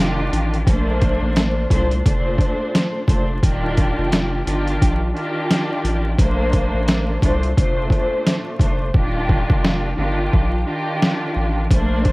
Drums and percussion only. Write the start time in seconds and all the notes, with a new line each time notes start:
0.33 closed hi-hat
0.54 closed hi-hat
0.67 kick, closed hi-hat
1.01 kick, closed hi-hat
1.36 snare, closed hi-hat
1.71 kick, closed hi-hat
1.91 closed hi-hat
2.06 kick, closed hi-hat
2.38 kick, closed hi-hat
2.75 snare, closed hi-hat
3.08 kick, closed hi-hat
3.43 kick, closed hi-hat
3.77 kick, closed hi-hat
4.12 snare, closed hi-hat
4.47 closed hi-hat
4.67 closed hi-hat
4.82 kick, closed hi-hat
5.17 closed hi-hat
5.51 snare, closed hi-hat
5.85 closed hi-hat
6.19 kick, closed hi-hat
6.53 kick, closed hi-hat
6.88 snare, closed hi-hat
7.22 kick, closed hi-hat
7.43 closed hi-hat
7.58 kick, closed hi-hat
7.90 kick, closed hi-hat
8.26 snare, closed hi-hat
8.59 kick, closed hi-hat
8.95 kick
9.29 kick
9.50 kick
9.65 snare
10.33 kick
11.02 snare
11.70 kick, closed hi-hat
12.05 kick, closed hi-hat